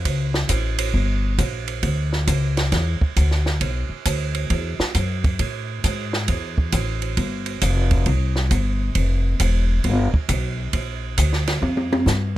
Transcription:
0.05 0.48 C#2 medium
0.05 kick soft
0.05 ride medium
0.34 snare soft
0.49 0.92 A1 medium
0.49 kick soft
0.49 hi-hat pedal medium
0.49 ride medium
0.78 ride medium
0.94 1.37 G1 medium
0.94 kick soft
1.38 1.82 A#1 medium
1.38 kick soft
1.38 hi-hat pedal soft
1.38 ride medium
1.68 ride soft
1.83 2.26 D2 medium
1.83 kick soft
1.83 ride medium
2.13 snare soft
2.27 2.71 C#2 medium
2.27 kick soft
2.27 hi-hat pedal medium
2.27 ride medium
2.57 snare soft
2.57 ride soft
2.72 2.99 E2 medium
2.72 kick soft
2.72 snare soft
2.72 ride medium
3.01 muted upright bass stroke soft
3.01 kick soft
3.16 3.60 D2 medium
3.16 kick soft
3.16 hi-hat pedal soft
3.16 ride medium
3.31 snare soft
3.46 snare soft
3.61 3.88 B1 medium
3.61 kick soft
3.61 ride medium
3.89 muted upright bass stroke soft
4.05 4.49 D2 medium
4.05 kick soft
4.05 hi-hat pedal medium
4.05 ride medium
4.35 ride soft
4.50 4.77 E2 medium
4.50 kick soft
4.50 ride medium
4.79 muted upright bass stroke soft
4.79 snare medium
4.95 5.38 F#2 medium
4.95 kick soft
4.95 hi-hat pedal soft
4.95 ride medium
5.24 kick medium
5.24 ride soft
5.39 5.82 A2 medium
5.39 kick soft
5.39 ride medium
5.84 6.27 G#2 medium
5.84 kick soft
5.84 hi-hat pedal medium
5.84 ride medium
6.13 snare soft
6.28 6.71 E2 medium
6.28 kick soft
6.28 ride medium
6.58 kick soft
6.72 7.16 A1 medium
6.72 kick soft
6.72 hi-hat pedal soft
6.72 ride medium
7.02 ride soft
7.17 7.60 G1 medium
7.17 kick soft
7.17 ride medium
7.46 ride soft
7.61 8.05 F1 medium
7.61 kick soft
7.61 hi-hat pedal medium
7.61 ride medium
7.91 kick soft
7.91 ride soft
8.06 8.49 C2 medium
8.06 kick soft
8.06 ride soft
8.36 snare soft
8.51 8.94 G1 medium
8.51 kick soft
8.51 hi-hat pedal soft
8.51 ride medium
8.95 9.38 F1 medium
8.95 kick soft
8.95 ride medium
9.40 9.83 E1 medium
9.40 kick soft
9.40 hi-hat pedal medium
9.40 ride medium
9.84 10.11 G1 medium
9.84 kick soft
9.84 ride soft
10.14 muted upright bass stroke soft
10.14 kick medium
10.29 10.72 B1 medium
10.29 kick soft
10.29 hi-hat pedal soft
10.29 ride medium
10.73 11.16 A#1 medium
10.73 kick soft
10.73 ride medium
11.18 11.61 D2 medium
11.18 kick soft
11.18 hi-hat pedal medium
11.18 ride medium
11.33 snare soft
11.47 snare soft
11.47 ride soft
11.62 12.05 F2 medium
11.62 high tom soft
11.77 high tom soft
11.93 high tom medium
12.06 12.38 G2 medium
12.06 snare soft
12.06 hi-hat pedal medium

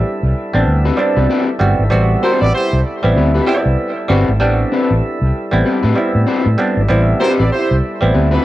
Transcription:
0.00 0.20 G3 loud
0.00 8.45 G3 medium
0.00 0.21 B3 medium
0.00 0.21 C4 medium
0.00 0.25 D4 loud
0.00 8.45 E4 medium
0.00 8.45 A4 medium
0.00 8.45 E5 medium
0.23 0.32 C2 medium
0.54 0.63 A1 loud
0.54 0.86 G3 medium
0.54 0.86 B3 medium
0.54 0.87 C4 medium
0.54 0.87 D4 loud
0.67 0.89 D2 medium
0.85 0.99 C4 medium
0.85 0.98 G4 medium
0.85 0.98 B4 medium
0.97 1.44 G3 medium
0.97 1.44 B3 medium
0.97 1.44 C4 medium
0.97 1.45 D4 loud
1.17 1.26 C2 medium
1.17 1.27 C4 medium
1.17 1.27 G4 medium
1.17 1.26 B4 medium
1.29 1.48 C4 medium
1.29 1.48 G4 medium
1.29 1.49 B4 loud
1.59 1.74 G1 loud
1.59 1.83 G3 medium
1.59 1.84 B3 medium
1.59 1.84 C4 medium
1.59 1.84 F#4 loud
1.79 1.88 G#1 medium
1.90 2.14 A1 medium
1.90 2.70 G3 medium
1.90 2.70 B3 medium
1.90 2.70 C4 medium
1.90 2.71 F#4 loud
2.21 2.45 C4 medium
2.21 2.37 E4 medium
2.21 2.37 G4 medium
2.21 2.45 G4 medium
2.21 2.46 B4 medium
2.21 2.37 C5 loud
2.41 2.50 A1 medium
2.41 2.51 G4 medium
2.41 2.51 B4 medium
2.41 2.51 D5 loud
2.54 2.79 E4 loud
2.54 2.79 G4 loud
2.54 2.79 C5 loud
2.73 2.82 C2 medium
3.03 3.13 A1 medium
3.03 3.35 G3 medium
3.03 3.36 B3 medium
3.03 3.36 C4 medium
3.03 3.36 E4 medium
3.16 3.39 D2 medium
3.16 3.31 C4 medium
3.16 3.31 G4 medium
3.16 3.31 B4 medium
3.34 3.47 C4 medium
3.34 3.44 E4 medium
3.34 3.44 G4 medium
3.34 3.47 G4 medium
3.34 3.44 B4 medium
3.34 3.47 B4 medium
3.46 3.93 G3 medium
3.46 3.93 B3 medium
3.46 3.93 C4 medium
3.46 3.61 E4 medium
3.46 3.94 E4 loud
3.46 3.61 G4 medium
3.46 3.61 C5 loud
3.66 3.75 C2 medium
4.08 4.23 G1 loud
4.08 4.32 G3 medium
4.08 4.33 B3 medium
4.08 4.28 C4 medium
4.08 4.33 C4 medium
4.08 4.33 F#4 loud
4.08 4.28 G4 medium
4.08 4.29 B4 medium
4.29 4.41 G#1 loud
4.40 4.63 A1 loud
4.40 5.19 G3 loud
4.40 5.19 B3 medium
4.40 5.20 C4 medium
4.40 5.20 D4 loud
4.72 4.90 C4 medium
4.72 4.91 G4 medium
4.72 4.91 B4 medium
4.91 4.99 A1 medium
5.22 5.30 C2 medium
5.51 5.62 A1 loud
5.51 5.84 G3 medium
5.51 5.84 B3 medium
5.51 5.85 C4 medium
5.51 5.85 E4 loud
5.65 5.79 C4 medium
5.65 5.80 G4 medium
5.65 5.80 B4 medium
5.83 5.93 A2 loud
5.83 5.96 C4 medium
5.83 5.96 G4 medium
5.83 5.96 B4 medium
5.95 6.42 G3 medium
5.95 6.42 B3 medium
5.95 6.42 C4 medium
5.95 6.43 E4 medium
6.15 6.24 A2 medium
6.27 6.45 C4 medium
6.27 6.46 G4 medium
6.27 6.46 B4 medium
6.27 6.56 C5 medium
6.46 6.55 A2 loud
6.58 6.82 G3 loud
6.58 6.82 B3 medium
6.58 6.82 C4 medium
6.58 6.83 D4 loud
6.58 6.87 G4 medium
6.77 6.86 G#1 medium
6.88 7.12 A1 loud
6.88 7.68 G3 loud
6.88 7.68 B3 medium
6.88 7.68 C4 loud
6.88 7.69 E4 loud
7.20 7.42 C4 medium
7.20 7.36 E4 medium
7.20 7.42 G4 loud
7.20 7.35 G4 medium
7.20 7.43 B4 loud
7.20 7.36 C5 loud
7.40 7.48 A1 medium
7.40 7.49 G4 medium
7.40 7.49 B4 medium
7.40 7.50 D5 loud
7.52 7.77 E4 loud
7.52 7.77 G4 loud
7.52 7.77 C5 loud
7.71 7.80 C2 medium
8.01 8.11 A1 loud
8.01 8.33 G3 medium
8.01 8.34 B3 medium
8.01 8.34 C4 medium
8.01 8.34 E4 medium
8.13 8.37 D2 medium
8.13 8.28 C4 soft
8.13 8.29 G4 medium
8.13 8.29 B4 medium
8.31 8.45 C4 medium
8.31 8.43 E4 medium
8.31 8.45 G4 medium
8.31 8.43 G4 medium
8.31 8.44 B4 medium
8.31 8.43 B4 medium

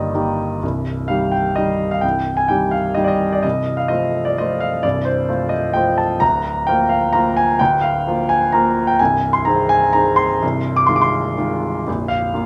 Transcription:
0.00 0.65 G1 soft
0.00 0.65 G2 soft
0.00 0.10 D#3 soft
0.00 0.11 A#3 soft
0.00 0.11 G4 soft
0.00 0.65 D5 soft
0.00 0.66 D#5 medium
0.14 0.59 D#3 soft
0.14 0.59 A#3 soft
0.14 0.59 G4 soft
0.62 1.08 C1 soft
0.62 1.08 C2 soft
1.08 1.53 D#3 soft
1.08 1.53 G3 soft
1.08 1.53 G4 soft
1.08 1.32 F5 medium
1.32 1.56 G5 soft
1.56 2.00 D#3 soft
1.56 2.00 G3 soft
1.56 2.00 G4 soft
1.56 1.91 D#5 medium
1.91 2.03 F5 medium
2.01 2.48 C1 soft
2.01 2.48 C2 soft
2.01 2.37 G5 medium
2.37 2.49 G#5 medium
2.48 2.93 D#3 soft
2.48 2.94 G3 soft
2.48 2.94 G4 soft
2.48 2.73 G5 medium
2.71 2.96 F5 medium
2.94 3.39 D#3 soft
2.94 3.40 G3 soft
2.94 3.40 G4 soft
2.94 3.03 D#5 medium
3.04 3.11 D5 soft
3.04 3.31 D#5 medium
3.33 3.44 D5 medium
3.43 3.89 C1 soft
3.43 3.89 C2 soft
3.43 3.78 D#5 medium
3.77 3.90 F5 medium
3.88 4.34 F3 soft
3.88 4.35 A3 soft
3.88 4.35 F4 soft
3.88 4.26 D#5 medium
4.25 4.38 D5 medium
4.38 4.81 F3 soft
4.38 4.81 A3 soft
4.38 4.81 F4 soft
4.38 4.62 D#5 medium
4.60 4.83 F5 medium
4.83 5.27 C1 soft
4.83 5.27 C2 soft
4.83 5.05 D5 medium
5.05 5.51 C5 soft
5.29 5.72 F3 soft
5.29 5.72 A3 soft
5.29 5.72 F4 soft
5.49 5.74 D#5 medium
5.73 6.17 F3 soft
5.73 6.17 A3 soft
5.73 6.18 F4 soft
5.73 5.98 G5 medium
5.98 6.21 A5 soft
6.20 6.66 D1 soft
6.20 6.66 D2 soft
6.20 6.66 A#5 medium
6.67 7.11 F3 soft
6.67 7.11 A#3 soft
6.67 7.11 F4 soft
6.67 6.90 G5 medium
6.89 7.13 F5 medium
7.13 7.56 F3 soft
7.13 7.56 A#3 soft
7.13 7.56 F4 soft
7.13 7.36 A#5 medium
7.37 7.59 G#5 medium
7.59 8.06 D1 soft
7.59 8.06 D2 soft
7.59 7.82 G5 medium
7.81 8.30 F5 medium
8.07 8.51 F3 soft
8.07 8.51 A#3 soft
8.07 8.51 F4 soft
8.29 8.54 G#5 medium
8.52 8.96 F3 soft
8.52 8.96 A#3 soft
8.52 8.96 F4 soft
8.52 8.88 A#5 medium
8.87 8.99 G5 medium
8.99 9.46 C1 soft
8.99 9.46 C2 soft
8.99 9.34 G#5 medium
9.33 9.46 C6 medium
9.45 9.91 D#3 soft
9.45 9.91 C4 soft
9.45 9.91 G#4 soft
9.45 9.70 A#5 medium
9.69 9.94 G#5 medium
9.93 10.38 D#3 soft
9.93 10.38 C4 soft
9.93 10.38 G#4 soft
9.93 10.18 A#5 medium
10.16 10.76 C6 medium
10.42 10.88 C1 soft
10.42 10.88 C2 soft
10.76 10.89 D6 medium
10.86 11.34 D#3 soft
10.86 11.34 G#3 soft
10.86 11.34 F4 soft
10.86 10.95 C6 medium
10.96 11.03 D6 medium
11.01 11.38 C6 medium
11.38 11.83 D#3 soft
11.38 11.83 G#3 soft
11.38 11.83 F4 soft
11.87 12.33 A#0 soft
11.87 12.33 A#1 soft
12.08 12.46 F5 medium
12.34 12.46 D3 soft
12.34 12.46 A#3 soft
12.34 12.46 F4 soft

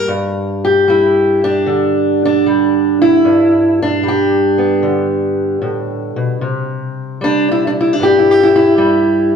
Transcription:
0.00 0.87 G3 medium
0.08 3.24 G2 medium
0.65 1.69 G4 medium
0.88 2.46 G3 medium
0.88 1.43 E4 medium
1.44 2.22 D4 loud
1.66 3.22 D3 medium
2.25 3.01 D4 medium
2.46 4.03 G3 medium
3.02 3.80 E4 loud
3.25 5.61 G2 medium
3.82 4.86 D4 medium
4.03 7.21 G3 medium
4.08 5.65 G4 medium
4.58 6.39 B3 soft
4.83 6.38 D3 medium
5.62 6.16 A2 medium
6.16 6.42 B2 medium
6.41 8.00 C3 medium
7.21 8.77 G3 medium
7.21 7.49 D4 loud
7.51 7.67 E4 medium
7.67 7.70 D4 medium
7.81 7.93 E4 medium
7.93 8.18 D4 loud
8.00 9.36 G2 medium
8.00 8.28 G4 loud
8.19 8.42 E4 medium
8.31 9.35 G4 medium
8.43 8.48 E4 medium
8.56 9.36 E4 loud
8.78 9.36 G3 medium

